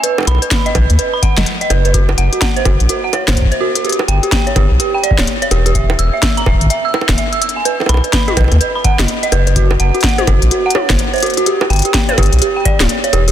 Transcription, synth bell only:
X:1
M:4/4
L:1/16
Q:"Swing 16ths" 1/4=126
K:B
V:1 name="Synth bell"
B z b B b d B z B b f d z d B B | F z f F f =c F z F f ^c =c z c F F | =G z =g G g c G z G g =d c z c G G | e z e' e e' a e z e e' e' e e e' e' g |
B z b B b d B z B b f d z d B B | F z f F f =c F z F f ^c =c z c F F | =G z =g G g c G z G g =d z2 c G G |]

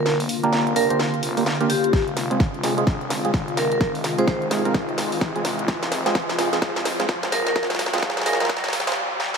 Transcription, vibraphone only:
X:1
M:4/4
L:1/16
Q:"Swing 16ths" 1/4=128
K:Fdor
V:1 name="Vibraphone"
z6 B z6 z G2 | z12 z2 B B | z3 c c z8 z3 | z12 z2 B B |
z6 B z8 z |]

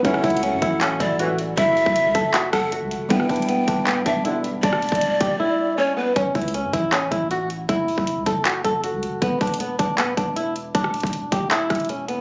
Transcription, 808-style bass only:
X:1
M:4/4
L:1/16
Q:1/4=157
K:F#phr
V:1 name="808-style bass" clef=bass
F,,,2 C,,3 F,, A,,,4 A,,,6 | F,,,3 F,,,2 C,, F,,,4 F,,,3 C,,3/2 F,,,3/2 | E,,,2 E,,,4 E,,,2 D,,,2 E,,,6 | E,,,3 E,,,3 E,,,2 z8 |
F,,,2 C,,3 F,, A,,,4 A,,,6 | F,,,3 F,,,2 C,, F,,,4 F,,,3 C,,3/2 F,,,3/2 | E,,,2 E,,,4 E,,,2 D,,,2 E,,,6 | E,,,3 E,,,3 E,,,4 E,,,6 |]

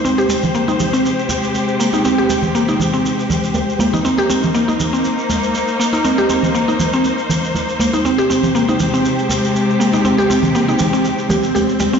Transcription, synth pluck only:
X:1
M:4/4
L:1/16
Q:"Swing 16ths" 1/4=120
K:Ablyd
V:1 name="Synth pluck"
C G G, z B, E z C z6 B, E | C G G, z B, E z C z6 B, E | C G C z B, E z C z6 B, E | C G C z B, E z C z6 B, E |
C G C z B, E z C z6 B, E | C G C z B, E z C z2 G z G z G, C |]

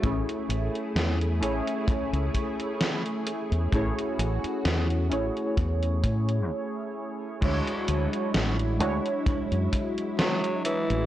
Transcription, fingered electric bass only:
X:1
M:4/4
L:1/16
Q:"Swing 16ths" 1/4=65
K:A
V:1 name="Fingered electric bass" clef=bass
A,,, z A,,, z E,,2 A,,, z2 C,, z4 z E,, | A,,, z A,,, z E,,2 A,,, z E,,2 A,,2 z4 | D,, z D,, z A,,,2 D,, z2 F,, z4 z A,,, |]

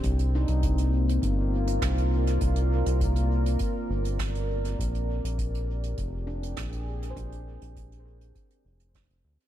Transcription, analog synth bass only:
X:1
M:4/4
L:1/16
Q:1/4=101
K:Cm
V:1 name="Analog synth bass" clef=bass
C,,3 C,,4- C,, G,,,4 C,,4 | C,,3 C,,4- C,, z2 G,,,6 | B,,,3 B,,,4- B,,, F,,,4 B,,,4 | B,,,3 B,,,4- B,,, z2 F,,,3 F,,, D,, z |]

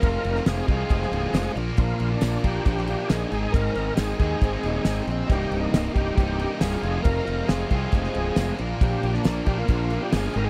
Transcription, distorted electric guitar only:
X:1
M:4/4
L:1/8
Q:1/4=137
K:Bbmix
V:1 name="Distorted electric guitar" clef=bass
[F,,C,F,A,CF]3 [F,,C,F,A,CF]4 [B,,F,B,DFB]- | [B,,F,B,DFB]3 [B,,F,B,DFB]4 [A,,E,A,CEA]- | [A,,E,A,CEA]3 [A,,E,A,CEA]4 z | [C,,G,,C,G,B,E]4 [C,,G,,C,G,B,E]3 [F,,C,F,A,CF]- |
[F,,C,F,A,CF]3 [F,,C,F,A,CF]4 [B,,F,B,DFB]- | [B,,F,B,DFB]3 [B,,F,B,DFB]4 [A,,E,A,CEA] |]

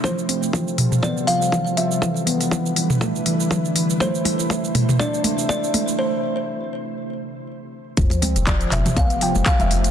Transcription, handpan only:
X:1
M:4/4
L:1/16
Q:"Swing 16ths" 1/4=121
K:Flyd
V:1 name="Handpan" clef=bass
F,2 C2 F,2 F, z B,2 F,2 F,2 F, z | E,2 B,2 E,2 E, z A,2 E,2 E,2 E, z | A,2 E2 A,2 A, z D2 A,2 z2 A, z | z16 |
F,2 C2 F,2 F, z B,2 F,2 F,2 F, z |]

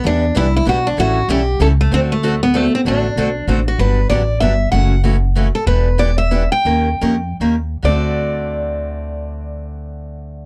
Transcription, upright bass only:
X:1
M:3/4
L:1/8
Q:"Swing" 1/4=192
K:Dmix
V:1 name="Upright bass" clef=bass
E,,2 C,,2 B,,,2 | A,,,2 B,,,2 ^C,,2 | D,,6 | A,,,2 B,,,2 A,,,2 |
G,,,2 A,,,2 G,,,2 | F,,,6 | E,,,6 | _E,,2 =F,,2 E,,2 |
D,,6- | D,,6 |]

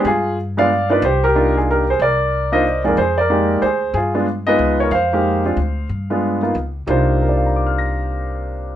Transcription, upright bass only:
X:1
M:3/4
L:1/8
Q:"Swing" 1/4=185
K:Cm
V:1 name="Upright bass" clef=bass
G,,6 | C,,6 | C,,6 | F,,4 D,,2 |
G,,4 _D,,2 | F,,4 D,,2 | G,,4 _D,,2 | C,,6- |
C,,6 |]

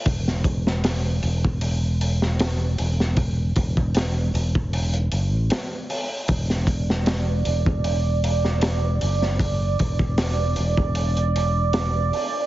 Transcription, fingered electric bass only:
X:1
M:4/4
L:1/16
Q:"Swing 16ths" 1/4=77
K:Clyd
V:1 name="Fingered electric bass" clef=bass
E,,,6 E,,,8 E,,,2- | E,,,2 E,,,4 E,,,4 F,,, A,,, z4 | E,,,6 E,,,8 F,,,2- | F,,,2 E,,,4 E,,,8 z2 |]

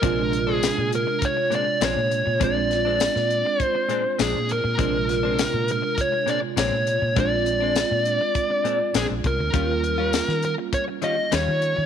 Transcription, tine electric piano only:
X:1
M:4/4
L:1/8
Q:1/4=101
K:Bbmix
V:1 name="Tine electric piano"
[C,A,DF]8 | [A,CDF]8 | [C,A,DF]8 | [A,CDF]8 |
[G,B,_DF]8 |]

